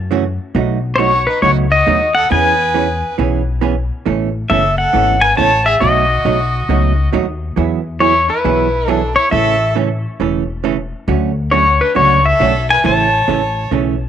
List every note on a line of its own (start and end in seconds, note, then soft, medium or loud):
0.00 0.37 F#2 medium
0.11 0.23 C#3 medium
0.11 0.23 E3 medium
0.11 0.23 A3 medium
0.11 0.23 C#4 medium
0.11 0.23 F#4 medium
0.55 1.25 B1 medium
0.55 0.77 B2 soft
0.55 0.77 F#3 soft
0.55 0.78 A3 medium
0.55 0.78 D#4 medium
0.55 0.78 F#4 medium
0.95 1.10 B2 medium
0.95 1.11 F#3 medium
0.95 0.99 D#4 soft
0.95 0.99 C5 medium
0.95 1.28 C#5 medium
0.99 1.11 A3 medium
0.99 1.11 D#4 medium
0.99 1.26 F#4 medium
0.99 1.11 F#4 medium
1.27 1.42 D#4 medium
1.27 1.41 B4 medium
1.42 1.80 C#2 medium
1.42 1.65 B2 medium
1.42 1.65 F#3 medium
1.42 1.65 A3 medium
1.42 1.65 D#4 medium
1.42 1.56 F#4 medium
1.42 1.66 F#4 medium
1.42 1.50 C#5 medium
1.71 2.12 F#4 medium
1.71 2.12 D#5 medium
1.87 2.24 D#2 medium
1.87 1.98 B2 medium
1.87 1.99 F#3 medium
1.87 1.99 A3 medium
1.87 1.99 D#4 medium
1.87 1.99 F#4 medium
2.15 2.29 A4 medium
2.15 2.31 F#5 medium
2.30 3.01 E2 medium
2.30 2.53 E3 medium
2.30 2.53 B3 medium
2.30 2.53 C#4 soft
2.30 2.53 G#4 medium
2.30 3.14 B4 medium
2.30 3.15 G#5 medium
2.74 2.86 E3 medium
2.74 2.86 B3 medium
2.74 2.87 C#4 medium
2.74 2.87 G#4 medium
3.18 3.89 B1 medium
3.18 3.40 E3 medium
3.18 3.41 B3 medium
3.18 3.41 C#4 medium
3.18 3.41 G#4 medium
3.61 3.73 E3 medium
3.61 3.74 B3 medium
3.61 3.74 C#4 medium
3.61 3.74 G#4 medium
4.05 4.41 A1 medium
4.05 4.28 B2 medium
4.05 4.28 E3 medium
4.05 4.28 A3 medium
4.05 4.29 C#4 medium
4.05 4.29 A4 medium
4.50 4.88 F#1 medium
4.50 4.62 B2 medium
4.50 4.62 E3 medium
4.50 4.62 A3 medium
4.50 4.62 C#4 medium
4.50 4.76 A4 medium
4.50 4.62 A4 medium
4.50 4.78 E5 medium
4.78 5.20 A4 medium
4.78 5.24 F#5 medium
4.93 5.31 G#1 medium
4.93 5.16 B2 medium
4.93 5.16 E3 medium
4.93 5.16 A3 medium
4.93 5.16 C#4 medium
4.93 5.16 A4 medium
5.21 5.36 B4 medium
5.21 5.36 G#5 medium
5.37 5.75 A1 medium
5.37 5.49 B2 medium
5.37 5.50 E3 medium
5.37 5.50 A3 medium
5.37 5.50 C#4 medium
5.37 5.50 A4 medium
5.37 5.64 C#5 medium
5.37 5.67 A5 loud
5.65 5.80 G#4 medium
5.65 5.82 E5 medium
5.80 6.17 B1 medium
5.80 6.03 B2 medium
5.80 6.04 F#3 soft
5.80 6.04 A3 medium
5.80 6.04 D#4 medium
5.80 7.08 F#4 medium
5.80 6.04 F#4 medium
5.80 7.09 D#5 medium
6.25 6.62 B1 medium
6.25 6.37 B2 medium
6.25 6.37 F#3 medium
6.25 6.37 A3 medium
6.25 6.38 D#4 medium
6.25 6.38 F#4 medium
6.69 7.06 C#2 medium
6.69 6.91 B2 medium
6.69 6.92 F#3 medium
6.69 6.92 A3 medium
6.69 6.92 D#4 medium
6.69 6.92 F#4 medium
7.13 7.51 D#2 medium
7.13 7.25 B2 medium
7.13 7.25 F#3 medium
7.13 7.25 A3 medium
7.13 7.25 D#4 medium
7.13 7.25 F#4 medium
7.56 8.27 E2 medium
7.56 7.79 E3 medium
7.56 7.79 F#3 soft
7.56 7.79 B3 medium
7.56 7.80 E4 medium
7.56 7.80 G#4 medium
8.00 8.12 E3 medium
8.00 8.12 F#3 medium
8.00 8.13 B3 medium
8.00 8.27 E4 medium
8.00 8.13 E4 medium
8.00 8.13 G#4 medium
8.00 8.30 C#5 medium
8.28 8.89 E4 medium
8.28 8.90 B4 medium
8.44 9.15 B1 medium
8.44 8.67 E3 medium
8.44 8.67 F#3 medium
8.44 8.67 B3 medium
8.44 8.67 E4 medium
8.44 8.67 G#4 medium
8.88 9.00 E3 medium
8.88 9.00 F#3 medium
8.88 9.00 B3 medium
8.88 9.12 D4 medium
8.88 9.00 E4 medium
8.88 9.00 G#4 medium
8.88 9.13 A4 medium
9.15 9.30 E4 medium
9.15 9.31 C#5 medium
9.31 10.03 A1 medium
9.31 9.54 C#3 soft
9.31 9.54 E3 medium
9.31 9.54 A3 medium
9.31 9.55 C#4 soft
9.31 9.73 A4 medium
9.31 9.55 A4 medium
9.31 9.73 E5 loud
9.75 9.88 C#3 medium
9.75 9.88 E3 medium
9.75 9.88 A3 medium
9.75 9.88 C#4 medium
9.75 9.88 A4 medium
10.20 10.90 E1 medium
10.20 10.42 C#3 medium
10.20 10.43 E3 medium
10.20 10.43 A3 medium
10.20 10.43 C#4 medium
10.20 10.43 A4 medium
10.64 10.76 C#3 medium
10.64 10.76 E3 medium
10.64 10.76 A3 medium
10.64 10.76 C#4 medium
10.64 10.76 A4 medium
11.08 11.78 D2 medium
11.08 11.30 D3 soft
11.08 11.30 F#3 medium
11.08 11.31 A3 medium
11.08 11.31 C#4 medium
11.08 11.31 F#4 medium
11.51 11.64 D3 medium
11.51 11.64 F#3 medium
11.51 11.64 A3 medium
11.51 11.64 C#4 medium
11.51 11.79 F#4 medium
11.51 11.64 F#4 medium
11.51 11.81 C#5 medium
11.81 11.95 D4 medium
11.81 11.97 B4 medium
11.95 12.33 C#2 medium
11.95 12.18 D3 medium
11.95 12.18 F#3 medium
11.95 12.18 A3 medium
11.95 12.18 C#4 medium
11.95 12.18 F#4 medium
11.95 12.23 F#4 medium
11.95 12.26 C#5 medium
12.26 12.66 A4 medium
12.26 12.66 E5 medium
12.40 12.77 B1 medium
12.40 12.52 D3 medium
12.40 12.52 F#3 medium
12.40 12.52 A3 medium
12.40 12.52 C#4 medium
12.40 12.52 F#4 medium
12.70 12.84 B4 medium
12.70 12.84 G#5 medium
12.84 13.19 A1 medium
12.84 13.06 C#3 medium
12.84 13.06 E3 medium
12.84 13.06 A3 medium
12.84 13.07 C#4 medium
12.84 13.07 A4 medium
12.84 13.68 C#5 medium
12.84 13.69 A5 loud
13.28 13.65 A1 medium
13.28 13.40 C#3 medium
13.28 13.40 E3 medium
13.28 13.40 A3 medium
13.28 13.40 C#4 medium
13.28 13.40 A4 medium
13.71 14.09 B1 medium
13.71 13.94 C#3 medium
13.71 13.94 E3 medium
13.71 13.94 A3 medium
13.71 13.94 C#4 medium
13.71 13.95 A4 medium